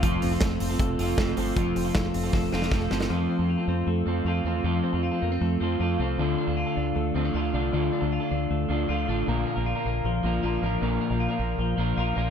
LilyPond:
<<
  \new Staff \with { instrumentName = "Clean electric guitar" } { \time 4/4 \key f \major \tempo 4 = 156 <f c' f' a'>8. <c' f' a'>4 <c' f' a'>8. <f c' f' a'>8 <f c' f' a'>8 <f c' f' a'>8 | <f c' f' a'>8. <c' f' a'>4 <c' f' a'>8. <f c' f' a'>8 <f c' f' a'>8 <f c' f' a'>8 | <f c' f' a'>8. <c' f' a'>8 <c' f' a'>4~ <c' f' a'>16 <f c' f' a'>8 <f c' f' a'>8 <f c' f' a'>8 | <f c' f' a'>8. <c' f' a'>8 <c' f' a'>4~ <c' f' a'>16 <f c' f' a'>8 <f c' f' a'>8 <f c' f' a'>8 |
<d f d' f' a'>8. <d' f' a'>8 <d' f' a'>4~ <d' f' a'>16 <f d' f' a'>8 <f d' f' a'>8 <f d' f' a'>8 | <d f d' f' a'>8. <d' f' a'>8 <d' f' a'>4~ <d' f' a'>16 <f d' f' a'>8 <f d' f' a'>8 <f d' f' a'>8 | <bes, d f bes d' bes'>8. <f bes d' bes'>8 <f bes d' bes'>4~ <f bes d' bes'>16 <f bes d' bes'>8 <f bes d' bes'>8 <f bes d' bes'>8 | <bes, d f bes d' bes'>8. <f bes d' bes'>8 <f bes d' bes'>4~ <f bes d' bes'>16 <f bes d' bes'>8 <f bes d' bes'>8 <f bes d' bes'>8 | }
  \new Staff \with { instrumentName = "Clean electric guitar" } { \time 4/4 \key f \major <f f'>8 c'8 a8 c'8 a8 f'8 a8 c'8 | <f f'>8 c'8 a8 c'8 a8 f'8 a8 c'8 | f8 c'8 f'8 c'8 a8 c'8 f'8 c'8 | f8 c'8 f'8 bes16 c'16 a8 c'8 f'8 c'8 |
d8 d'8 f'8 d'8 a8 c'16 d'16 f'8 d'8 | d8 d'8 f'8 d'8 a8 d'8 f'8 d'8 | bes,8 bes8 f'8 bes8 f8 bes8 f'8 bes8 | bes,8 bes8 f'8 bes8 f8 bes8 f'8 bes8 | }
  \new Staff \with { instrumentName = "Fingered electric bass" } { \clef bass \time 4/4 \key f \major f,,8 f,,8 f,,8 f,,8 f,,8 f,,8 f,,8 g,,8 | f,,8 f,,8 f,,8 f,,8 f,,8 f,,8 f,,8 g,,8 | f,8 r16 f,8 r16 f,8 f,8 f,8 f,8 e,8 | f,8 r16 f,8 r16 f,8 f,8 f,8 f,8 c,8 |
d,8 r16 d,8 r16 d,8 d,8 d,8 d,8 c,8 | d,8 r16 d,8 r16 d,8 d,8 d,8 d,8 a,,8 | bes,,8 r16 bes,,8 r16 bes,,8 bes,,8 bes,,8 bes,,8 a,,8 | bes,,8 r16 bes,,8 r16 bes,,8 bes,,8 bes,,8 bes,,8 bes,,8 | }
  \new DrumStaff \with { instrumentName = "Drums" } \drummode { \time 4/4 <hh bd>8 hho8 <hh bd sn>8 hho8 <hh bd>8 hho8 <hh bd sn>8 hho8 | <hh bd>8 hho8 <hh bd sn>8 hho8 <bd sn>8 sn16 sn16 <bd sn>8 sn16 sn16 | r4 r4 r4 r4 | r4 r4 r4 r4 |
r4 r4 r4 r4 | r4 r4 r4 r4 | r4 r4 r4 r4 | r4 r4 r4 r4 | }
>>